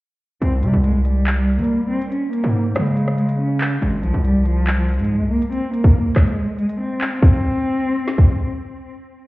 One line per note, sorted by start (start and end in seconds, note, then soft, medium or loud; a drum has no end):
0.42 0.64 C2 loud
0.42 0.60 C4 medium
0.42 closed hi-hat medium
0.63 0.73 C3 loud
0.63 0.82 G3 medium
0.63 closed hi-hat medium
0.73 1.60 C2 loud
0.84 1.03 G#3 medium
0.84 closed hi-hat medium
1.05 1.35 G3 medium
1.05 closed hi-hat medium
1.27 clap loud
1.38 1.56 G3 medium
1.48 closed hi-hat medium
1.53 closed hi-hat medium
1.59 1.99 G3 loud
1.59 1.89 A#3 medium
1.59 closed hi-hat medium
1.64 closed hi-hat medium
1.90 2.09 C4 medium
2.02 closed hi-hat medium
2.11 2.30 C#4 medium
2.11 closed hi-hat medium
2.33 2.73 A#3 medium
2.33 closed hi-hat medium
2.44 2.74 G#2 loud
2.75 3.78 C#3 loud
2.75 3.16 G#3 medium
2.75 cross-stick medium
2.75 closed hi-hat medium
2.86 closed hi-hat soft
2.97 closed hi-hat medium
3.08 cross-stick medium
3.18 3.37 G#3 medium
3.18 closed hi-hat medium
3.29 closed hi-hat medium
3.40 3.80 C#4 medium
3.61 clap loud
3.61 closed hi-hat medium
3.82 4.05 G#1 loud
3.82 4.01 G#3 medium
3.82 closed hi-hat medium
4.03 4.13 C2 loud
4.03 4.22 F3 medium
4.03 closed hi-hat medium
4.14 5.01 C2 loud
4.25 4.43 G3 medium
4.25 closed hi-hat medium
4.45 4.76 F3 medium
4.45 closed hi-hat medium
4.67 clap loud
4.78 4.96 F3 medium
4.88 closed hi-hat medium
4.94 closed hi-hat medium
4.99 5.22 G#2 medium
4.99 5.29 G#3 medium
4.99 closed hi-hat medium
5.04 closed hi-hat medium
5.20 5.41 C2 loud
5.31 5.50 A#3 medium
5.42 closed hi-hat medium
5.52 5.71 C4 medium
5.52 closed hi-hat medium
5.74 6.14 A#3 medium
5.74 closed hi-hat medium
5.84 kick loud
6.16 6.56 G#3 medium
6.16 kick medium
6.16 cross-stick loud
6.16 clap medium
6.16 closed hi-hat medium
6.27 closed hi-hat medium
6.59 6.77 G#3 medium
6.59 closed hi-hat medium
6.69 closed hi-hat medium
6.80 7.20 C4 medium
7.01 clap loud
7.01 open hi-hat soft
7.22 8.46 C4 loud
7.22 kick loud
7.22 crash medium
8.08 snare medium
8.18 kick medium